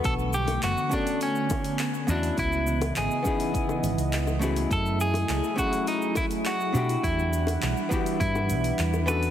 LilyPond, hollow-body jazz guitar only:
\new Staff \with { instrumentName = "Hollow-body jazz guitar" } { \time 4/4 \key b \minor \tempo 4 = 103 <b d' fis' a' b'>8 r4 <d b cis' fis' a'>2 <b cis' e' fis' dis''>8~ | <b cis' e' fis' dis''>4. <b cis' dis' e' gis'>2 <a cis' e' fis' gis'>8~ | <a cis' e' fis' gis'>4. <a cis' e' fis' gis'>2 <b d' e' fis' g'>8~ | <b d' e' fis' g'>4. <b d' e' fis' g'>2 <b cis' d' fis' a'>8 | }